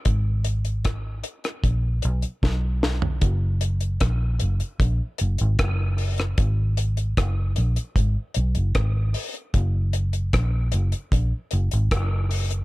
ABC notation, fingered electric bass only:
X:1
M:4/4
L:1/16
Q:1/4=76
K:F#mix
V:1 name="Fingered electric bass" clef=bass
G,,,6 z2 A,,,2 B,,, z B,,,4 | F,,,4 A,,,2 F,,, z A,,, z F,,, G,,, F,,,4 | G,,,4 F,,,2 A,,, z G,,, z B,,, F,,, G,,,2 z2 | F,,,4 A,,,2 F,,, z A,,, z F,,, G,,, F,,,4 |]